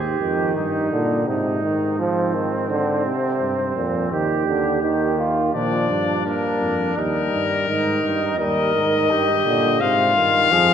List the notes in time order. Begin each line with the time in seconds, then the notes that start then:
Already playing: D#2 G4
0.20 F2 D#3
0.56 G2 D#4
0.92 A#2 D3
1.28 G#2 C3 D#4
1.63 D#3
1.99 F3 C4
2.35 D#3
2.70 D3
3.05 C3
3.40 G2
3.76 F2 A#2
4.11 D#2 D#3 G4
4.47 D3
4.82 D#3 G4
5.18 F4
5.53 A#2 F3 D4 D5
5.90 G2
6.25 A#3 D4 A#4
6.61 F2
6.97 D#2 G3 D#4 A#4
7.33 G2
7.68 G#2 D#3 D#4
8.04 G2
8.39 D#2 G3 A#4 D#5
8.75 G#2 D#3
9.10 G2 G4
9.45 A#2 D3
9.80 G#2 C3 F4 F5
10.16 G2 D#3
10.51 F2 F3 G#4